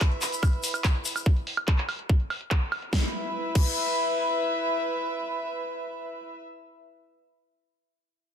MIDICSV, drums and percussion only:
0, 0, Header, 1, 2, 480
1, 0, Start_track
1, 0, Tempo, 416667
1, 1453, Time_signature, 4, 2, 24, 8
1, 9615, End_track
2, 0, Start_track
2, 0, Title_t, "Drums"
2, 8, Note_on_c, 9, 82, 41
2, 13, Note_on_c, 9, 36, 127
2, 13, Note_on_c, 9, 39, 119
2, 13, Note_on_c, 9, 42, 52
2, 13, Note_on_c, 9, 76, 39
2, 123, Note_off_c, 9, 82, 0
2, 128, Note_off_c, 9, 36, 0
2, 128, Note_off_c, 9, 39, 0
2, 128, Note_off_c, 9, 42, 0
2, 128, Note_off_c, 9, 76, 0
2, 133, Note_on_c, 9, 42, 26
2, 248, Note_off_c, 9, 42, 0
2, 249, Note_on_c, 9, 82, 99
2, 253, Note_on_c, 9, 39, 38
2, 253, Note_on_c, 9, 46, 112
2, 364, Note_off_c, 9, 82, 0
2, 368, Note_off_c, 9, 39, 0
2, 368, Note_off_c, 9, 46, 0
2, 373, Note_on_c, 9, 42, 50
2, 379, Note_on_c, 9, 82, 52
2, 488, Note_off_c, 9, 42, 0
2, 493, Note_on_c, 9, 36, 119
2, 493, Note_on_c, 9, 42, 50
2, 493, Note_on_c, 9, 76, 76
2, 495, Note_off_c, 9, 82, 0
2, 501, Note_on_c, 9, 82, 40
2, 608, Note_off_c, 9, 36, 0
2, 608, Note_off_c, 9, 42, 0
2, 608, Note_off_c, 9, 76, 0
2, 613, Note_on_c, 9, 42, 25
2, 616, Note_off_c, 9, 82, 0
2, 728, Note_off_c, 9, 42, 0
2, 730, Note_on_c, 9, 82, 95
2, 733, Note_on_c, 9, 46, 112
2, 846, Note_off_c, 9, 82, 0
2, 848, Note_off_c, 9, 46, 0
2, 853, Note_on_c, 9, 42, 50
2, 853, Note_on_c, 9, 76, 38
2, 858, Note_on_c, 9, 82, 51
2, 968, Note_off_c, 9, 42, 0
2, 968, Note_off_c, 9, 76, 0
2, 973, Note_off_c, 9, 82, 0
2, 973, Note_on_c, 9, 36, 124
2, 973, Note_on_c, 9, 39, 114
2, 975, Note_on_c, 9, 82, 38
2, 1088, Note_off_c, 9, 36, 0
2, 1088, Note_off_c, 9, 39, 0
2, 1090, Note_off_c, 9, 82, 0
2, 1093, Note_on_c, 9, 42, 26
2, 1208, Note_off_c, 9, 42, 0
2, 1211, Note_on_c, 9, 82, 89
2, 1213, Note_on_c, 9, 46, 107
2, 1326, Note_off_c, 9, 82, 0
2, 1328, Note_off_c, 9, 46, 0
2, 1333, Note_on_c, 9, 42, 51
2, 1333, Note_on_c, 9, 76, 39
2, 1337, Note_on_c, 9, 82, 52
2, 1448, Note_off_c, 9, 42, 0
2, 1448, Note_off_c, 9, 76, 0
2, 1453, Note_off_c, 9, 82, 0
2, 1453, Note_on_c, 9, 36, 123
2, 1453, Note_on_c, 9, 42, 48
2, 1568, Note_off_c, 9, 36, 0
2, 1568, Note_off_c, 9, 42, 0
2, 1573, Note_on_c, 9, 42, 24
2, 1688, Note_off_c, 9, 42, 0
2, 1693, Note_on_c, 9, 46, 109
2, 1808, Note_off_c, 9, 46, 0
2, 1813, Note_on_c, 9, 42, 49
2, 1813, Note_on_c, 9, 76, 76
2, 1928, Note_off_c, 9, 42, 0
2, 1928, Note_off_c, 9, 76, 0
2, 1933, Note_on_c, 9, 36, 123
2, 1933, Note_on_c, 9, 39, 117
2, 1933, Note_on_c, 9, 42, 49
2, 2048, Note_off_c, 9, 36, 0
2, 2048, Note_off_c, 9, 39, 0
2, 2048, Note_off_c, 9, 42, 0
2, 2053, Note_on_c, 9, 39, 35
2, 2053, Note_on_c, 9, 42, 24
2, 2168, Note_off_c, 9, 39, 0
2, 2168, Note_off_c, 9, 42, 0
2, 2173, Note_on_c, 9, 46, 110
2, 2173, Note_on_c, 9, 76, 39
2, 2288, Note_off_c, 9, 46, 0
2, 2288, Note_off_c, 9, 76, 0
2, 2293, Note_on_c, 9, 42, 47
2, 2408, Note_off_c, 9, 42, 0
2, 2413, Note_on_c, 9, 36, 124
2, 2413, Note_on_c, 9, 42, 50
2, 2528, Note_off_c, 9, 36, 0
2, 2528, Note_off_c, 9, 42, 0
2, 2533, Note_on_c, 9, 42, 25
2, 2648, Note_off_c, 9, 42, 0
2, 2653, Note_on_c, 9, 46, 110
2, 2653, Note_on_c, 9, 76, 39
2, 2768, Note_off_c, 9, 46, 0
2, 2768, Note_off_c, 9, 76, 0
2, 2773, Note_on_c, 9, 42, 47
2, 2888, Note_off_c, 9, 42, 0
2, 2893, Note_on_c, 9, 36, 122
2, 2893, Note_on_c, 9, 39, 113
2, 3008, Note_off_c, 9, 36, 0
2, 3008, Note_off_c, 9, 39, 0
2, 3013, Note_on_c, 9, 42, 25
2, 3129, Note_off_c, 9, 42, 0
2, 3133, Note_on_c, 9, 46, 105
2, 3133, Note_on_c, 9, 76, 77
2, 3248, Note_off_c, 9, 46, 0
2, 3248, Note_off_c, 9, 76, 0
2, 3253, Note_on_c, 9, 42, 49
2, 3368, Note_off_c, 9, 42, 0
2, 3373, Note_on_c, 9, 36, 107
2, 3373, Note_on_c, 9, 38, 82
2, 3488, Note_off_c, 9, 36, 0
2, 3488, Note_off_c, 9, 38, 0
2, 4093, Note_on_c, 9, 36, 107
2, 4093, Note_on_c, 9, 49, 84
2, 4208, Note_off_c, 9, 36, 0
2, 4208, Note_off_c, 9, 49, 0
2, 9615, End_track
0, 0, End_of_file